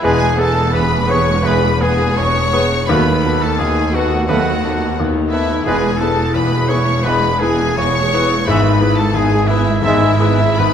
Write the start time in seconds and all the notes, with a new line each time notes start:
0.02 E1 E2 E3 G#3 B3 G#4 B4 G#5
0.20 G#3 B4
0.36 B3 G#4 A4 B4 A5
0.42 A5
0.55 G#3 B4
0.71 E1 E2 B3 G#4 B4 B5
0.75 B4 B5
0.91 G#3 B4
1.07 B3 G#4 B4 C#5 C#6
1.12 C#6
1.29 G#3 B4
1.42 E1 E2 E3 G#3 B3 G#4 B4 B5
1.63 G#3 B4
1.81 B3 G#4 B4 G#5
2.02 G#3 B4
2.17 E1 E2 B3 G#4 C#5 C#6
2.38 G#3 B4
2.53 B3 G#4 B4
2.73 G#3 B4
2.88 D#2 D#3 F#3 A3 B3 F#4 B4 B5
3.08 A3 D#4
3.25 B3 F#4 A4 B4
3.41 A3 D#4 A4 A5
3.58 D#2 D#3 F#4 G#4 G#5
3.62 B3
3.79 A3 D#4
3.91 B3 F#4 F#5
3.96 B3 F#4 A4 B4
4.13 A3 D#4
4.26 D#2 D#3 F#3 A3 B3 F#4 B4 F#5
4.47 A3 D#4
4.64 B3 F#4 A4 B4
4.80 A3 D#4
4.98 D#2 D#3 B3 F#4
5.15 A3 D#4
5.30 B3 E4 F#4 A4 B4 E5
5.50 A3 D#4
5.64 E1 E2 E3 G#3 B3 E4 G#4 B4 G#5
5.68 E1
5.83 G#3 G#4
5.98 B3 E4 A4 B4 A5
6.02 G#4 A5
6.17 G#3 G#4
6.34 E1 E2 B3 E4 B4 B5
6.38 B5
6.50 G#3 G#4
6.68 B3 E4 G#4 B4 C#5 C#6
6.86 G#3 G#4
7.03 E1 E2 E3 G#3 B3 E4 G#4 B4 B5
7.07 B5
7.22 G#3 G#4
7.40 B3 E4 G#4 B4 G#5
7.62 G#3 G#4
7.76 E1 E2 C#5 C#6
7.81 B3 E4 C#6
7.99 G#3 G#4
8.14 B3 E4 G#4 B4
8.35 G#3 G#4
8.47 G#1 G#2 E3 G#3 B3 G#4 B4 E5 B5
8.51 E4
8.66 G#3 G#4
8.81 B3 E4 G#4 B4
8.97 G#3 G#4 A4 A5
9.14 G#1 G#2 B3 G#4 G#5
9.18 E4
9.33 G#3 G#4
9.46 B3 E4 E5
9.51 E4 G#4 B4
9.67 G#3 G#4
9.82 G#1 G#2 E3 B3 E4 G#4 E5
9.86 G#3 E4
10.03 G#3 G#4
10.20 B3 E4 G#4 B4
10.41 G#3 G#4
10.56 G#1 G#2 B3 E4 B4 B5